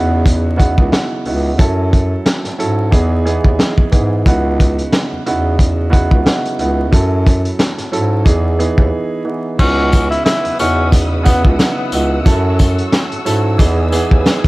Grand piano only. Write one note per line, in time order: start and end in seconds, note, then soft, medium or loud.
0.00 0.55 C#3 medium
0.00 0.55 B3 medium
0.00 0.55 D#4 medium
0.00 0.55 E4 medium
0.00 0.55 F#4 loud
0.57 0.89 C#3 medium
0.57 0.89 B3 medium
0.57 0.89 D#4 medium
0.57 0.89 E4 medium
0.57 0.90 F#4 loud
0.92 1.23 C#3 medium
0.92 1.23 B3 medium
0.92 1.23 D#4 medium
0.92 1.23 E4 medium
0.92 1.24 F#4 medium
1.26 1.57 C#3 medium
1.26 1.57 B3 medium
1.26 1.57 D#4 medium
1.26 1.57 E4 medium
1.26 1.57 F#4 medium
1.58 2.52 F#3 loud
1.58 2.52 C#4 medium
1.58 2.52 E4 medium
1.58 2.52 A4 loud
2.58 2.92 F#3 medium
2.58 2.92 C#4 medium
2.58 2.92 E4 medium
2.58 2.93 A4 loud
2.91 3.23 E3 medium
2.91 3.23 B3 medium
2.91 3.23 D#4 medium
2.91 3.23 G#4 loud
3.25 3.88 E3 medium
3.25 3.88 B3 medium
3.25 3.88 D#4 medium
3.25 3.88 G#4 loud
3.91 4.23 E3 medium
3.91 4.23 B3 medium
3.91 4.23 D#4 medium
3.91 4.23 G#4 medium
4.26 5.19 C#3 medium
4.26 5.19 B3 medium
4.26 5.19 D#4 medium
4.26 5.19 E4 medium
4.26 5.20 F#4 loud
5.26 5.88 C#3 medium
5.26 5.88 B3 medium
5.26 5.88 D#4 medium
5.26 5.88 E4 medium
5.26 5.89 F#4 loud
5.90 6.22 C#3 medium
5.90 6.22 B3 medium
5.90 6.23 D#4 medium
5.90 6.23 E4 medium
5.90 6.23 F#4 loud
6.25 6.56 C#3 medium
6.25 6.56 B3 medium
6.25 6.57 D#4 medium
6.25 6.57 E4 medium
6.25 6.57 F#4 medium
6.59 6.90 C#3 medium
6.59 6.90 B3 medium
6.59 6.90 D#4 medium
6.59 6.91 E4 medium
6.59 6.91 F#4 medium
6.92 7.85 F#3 loud
6.92 7.85 C#4 medium
6.92 7.85 E4 medium
6.92 7.86 A4 loud
7.92 8.25 F#3 medium
7.92 8.26 C#4 medium
7.92 8.26 E4 medium
7.92 8.26 A4 loud
8.25 8.56 E3 medium
8.25 8.57 B3 medium
8.25 8.57 D#4 medium
8.25 8.57 G#4 loud
8.59 9.21 E3 medium
8.59 9.21 B3 medium
8.59 9.21 D#4 medium
8.59 9.21 G#4 loud
9.25 9.56 E3 medium
9.25 9.57 B3 medium
9.25 9.57 D#4 medium
9.25 9.57 G#4 medium
9.59 10.52 C#3 medium
9.59 10.52 B3 medium
9.59 10.53 D#4 medium
9.59 10.53 E4 medium
9.59 10.53 F#4 loud
10.59 11.21 C#3 medium
10.59 11.21 B3 medium
10.59 11.22 D#4 medium
10.59 11.22 E4 medium
10.59 11.22 F#4 loud
11.23 11.56 C#3 loud
11.23 11.56 B3 medium
11.23 11.56 D#4 medium
11.23 11.56 E4 medium
11.23 11.56 F#4 loud
11.58 11.90 C#3 medium
11.58 11.90 B3 medium
11.58 11.90 D#4 medium
11.58 11.90 E4 medium
11.58 11.90 F#4 medium
11.92 12.24 C#3 medium
11.92 12.24 B3 medium
11.92 12.24 D#4 medium
11.92 12.24 E4 medium
11.92 12.24 F#4 medium
12.25 13.18 F#3 loud
12.25 13.19 C#4 medium
12.25 13.19 E4 medium
12.25 13.19 A4 loud
13.25 13.59 F#3 medium
13.25 13.59 C#4 medium
13.25 13.59 E4 medium
13.25 13.59 A4 loud
13.58 13.90 E3 loud
13.58 13.90 B3 medium
13.58 13.90 D#4 medium
13.58 13.90 G#4 loud
13.92 14.48 E3 loud
13.92 14.48 B3 medium
13.92 14.48 D#4 medium
13.92 14.48 G#4 loud